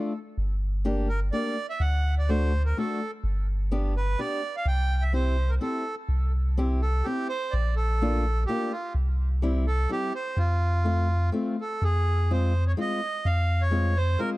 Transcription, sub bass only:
0.38 G1
1.80 D2
3.24 G1
4.66 C2
6.09 C2
7.53 A#1
8.95 C2
10.37 F2
11.82 F2
13.25 F2

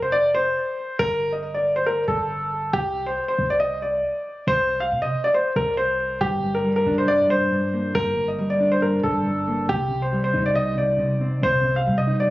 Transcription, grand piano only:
0.02 C5
0.12 D5
0.35 C5
0.99 A#4
1.33 D#5
1.54 D5
1.76 C5
1.86 A#4
2.08 A4
2.73 G4
3.06 C5
3.28 C5
3.50 D5
3.60 D#5
3.82 D5
4.48 C5
4.80 F5
5.02 D#5
5.24 D5
5.34 C5
5.56 A#4
5.77 C5
6.21 G4
6.55 A#4
6.76 A#4
6.98 C5
7.08 D5
7.30 C5
7.95 A#4
8.28 D#5
8.50 D5
8.72 C5
8.82 A#4
9.03 A4
9.69 G4
10.02 C5
10.24 C5
10.46 D5
10.55 D#5
10.78 D5
11.43 C5
11.76 F5
11.98 D#5
12.20 D5

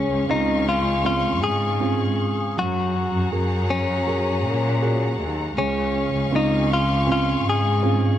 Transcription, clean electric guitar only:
Already playing: C#4
0.31 D#4
0.69 F4
1.06 F4
1.44 G#4
2.59 F#4
3.70 C#4
5.58 C#4
6.36 D#4
6.73 F4
7.12 F4
7.50 G#4

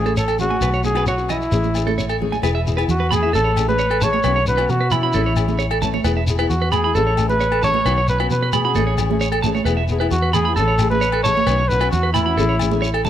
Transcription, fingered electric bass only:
Already playing: A1
0.61 B1
1.52 A1
2.43 E1
2.88 E2
3.33 A1
4.24 B1
4.69 B2
5.14 A1
6.04 E1
6.50 E2
6.95 A1
7.85 B1
8.30 B2
8.75 A1
9.65 E1
10.11 E2
10.56 A1
11.47 B1
11.93 E2
12.37 A1

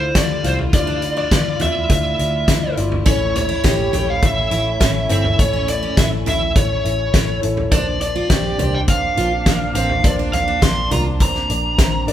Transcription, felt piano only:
Already playing: D3 E4 F4 A4 D5 E5
0.14 E4 F4 G4
0.43 E4 F4 F5
0.72 D3 E4 F4 D5
1.01 E4 F4 D5
1.30 E4 F4 D5
1.60 E4 F4 D5
1.89 E4 F4 D5
2.18 E4 F4 D5
2.47 E4 F4 D5
2.76 E4 F4 D5
3.05 A2 E4 A4 C#5
3.33 E4 A4
3.63 E4 A4 C#5
3.92 E4 A4 C#5
4.21 E4 A4 C#5
4.50 E4 A4 C#5
4.80 E4 A4 C#5
5.09 E4 A4 E5
5.38 A2 E4 A4 C#5
5.67 E4 A4 E5
5.96 E4 A4 E5
6.26 E4 A4 E5
6.54 E4 A4 E5
6.83 E4 A4 E5
7.13 E4 A4 C#5
7.41 E4 A4 C#5
7.71 A#2 D4 A#4 C5
8.28 D4 A#4 C5
8.57 D4 A#4 C5
8.86 D4 A#4 C5
9.16 D4 A#4 C5
9.45 D4 A#4 D5
9.73 D4 A#4 C5
10.03 A#2 D4 A#4 C5
10.32 D4 A#4 D5
10.61 D4 A#4 D5
10.90 D4 A#4 D5
11.20 D4 A#4 C5
11.49 D4 A#4 D5
11.79 D4 A#4 C5
12.07 D4 A#4 D5

